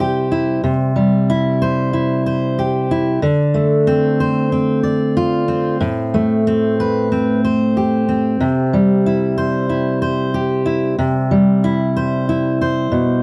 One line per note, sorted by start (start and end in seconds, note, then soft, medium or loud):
0.00 0.61 C3 medium
0.00 0.95 G3 medium
0.00 0.30 E4 medium
0.00 0.61 G4 medium
0.00 1.61 C5 medium
0.32 0.60 E4 medium
0.64 3.18 C3 medium
0.96 3.22 G3 medium
1.30 1.92 E4 medium
1.62 2.26 C5 medium
1.93 2.90 E4 medium
2.26 3.25 C5 medium
2.59 3.19 G4 medium
2.91 3.19 E4 medium
3.22 5.80 D3 medium
3.54 5.76 A3 medium
3.87 4.52 C4 medium
4.20 4.83 C5 medium
4.52 5.48 C4 medium
4.83 5.76 D5 medium
5.17 5.77 F4 medium
5.48 6.47 C4 medium
5.80 8.39 A2 medium
6.14 8.36 A3 medium
6.47 7.11 C4 medium
6.80 7.43 B4 medium
7.12 8.08 C4 medium
7.45 9.37 C5 medium
7.77 10.34 G4 medium
8.09 9.06 C4 medium
8.40 10.95 C3 medium
8.73 11.30 G3 medium
9.06 9.69 E4 medium
9.38 10.01 C5 medium
9.69 10.64 E4 medium
10.02 11.96 C5 medium
10.34 10.95 G4 medium
10.66 10.94 E4 medium
10.99 12.91 C3 medium
11.31 13.23 G3 medium
11.64 12.28 E4 medium
11.96 12.61 C5 medium
12.29 13.23 E4 medium
12.61 13.23 C5 medium
12.92 13.23 B2 medium